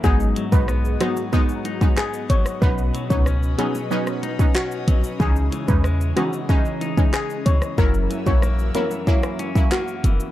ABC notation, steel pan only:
X:1
M:4/4
L:1/16
Q:1/4=93
K:B
V:1 name="Steel pan"
G z2 B z2 F z4 z G z c z | B z2 c z2 G z4 z F3 z | G z2 B z2 F z4 z G z c z | A z2 c z2 A z4 z F3 z |]